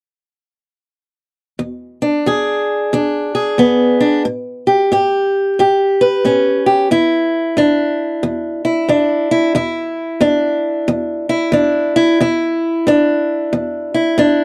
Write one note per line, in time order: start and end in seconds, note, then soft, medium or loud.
1.59 2.20 E2 medium
2.02 2.92 D4 medium
2.26 2.87 E2 medium
2.26 3.34 G#4 medium
2.93 3.54 E2 medium
2.93 3.99 D4 soft
3.35 4.22 G#4 soft
3.58 4.20 E2 medium
3.58 4.22 B3 medium
4.00 4.22 D4 soft
4.25 4.86 A2 medium
4.67 4.91 G4 soft
4.92 5.53 A2 medium
4.92 5.59 G4 medium
5.59 6.20 A2 medium
5.59 6.65 G4 soft
6.01 6.88 B4 medium
6.25 6.86 A2 medium
6.25 6.88 C#4 soft
6.66 6.88 G4 soft
6.91 7.52 E2 medium
6.91 8.64 E4 medium
7.57 8.18 E2 medium
7.57 8.89 D4 medium
8.23 8.84 E2 medium
8.65 9.31 E4 soft
8.89 9.50 E2 medium
8.89 9.58 D4 medium
9.31 9.55 E4 medium
9.55 10.16 E2 medium
9.55 11.29 E4 medium
10.21 10.82 E2 medium
10.21 11.53 D4 medium
10.88 11.49 E2 medium
11.29 11.96 E4 medium
11.52 12.14 E2 medium
11.52 12.23 D4 medium
11.96 12.21 E4 medium
12.20 12.82 E2 medium
12.20 13.94 E4 medium
12.87 13.48 E2 medium
12.87 14.17 D4 medium
13.53 14.14 E2 medium
13.94 14.44 E4 medium
14.18 14.44 E2 medium
14.18 14.44 D4 medium